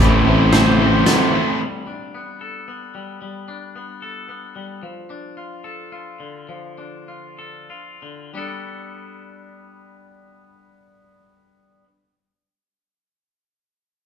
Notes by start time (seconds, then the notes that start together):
Already playing: E3 A3 C4 A4 D5
0.00 A1 A2 E3 A3 C4 E4 C5
0.25 A2 E3 A3 C4 E4 C5
0.52 A2 E3 A3 C4 E4 C5, snare, closed hi-hat
0.79 A2 E3 A3 C4 E4 C5
1.06 A2 E3 A3 C4 E4 A4 C5, snare, closed hi-hat
1.33 A2 E3 A3 C4 E4 C5
1.60 G3
1.87 D4
2.14 B3
2.41 A4
2.68 B3
2.95 G3
3.22 G3
3.48 D4
3.76 B3
4.02 A4
4.29 B3
4.56 G3
4.83 F3
5.10 D4
5.37 F4
5.64 A4
5.92 F4
6.20 D3
6.49 F3
6.78 D4
7.08 F4
7.39 A4
7.70 F4
8.02 D3
8.34 G3 B3 D4 A4